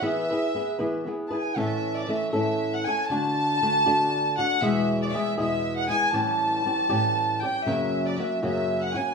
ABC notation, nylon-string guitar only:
X:1
M:6/8
L:1/8
Q:3/8=79
K:E
V:1 name="Nylon-string guitar"
[E,B,EGB] [EGB] [B,EGB] [E,B,EGB] [B,EGB] [EGB] | [K:A] [A,,E,A,CA]2 [E,A,CA] [A,,E,A,CA]2 [A,CA] | [D,A,DF]2 [D,A,DF] [D,A,DF]2 [A,DF] | [E,,B,,E,G,B,G]2 [E,G,B,G] [E,,B,,E,G,B,G]2 [E,G,B,G] |
[A,,E,=G,C=G]2 [E,G,CG] [A,,E,G,CG]2 [G,CG] | [F,,C,F,^A,CF]2 [F,A,CF] [F,,C,F,A,CF]2 [F,A,CF] |]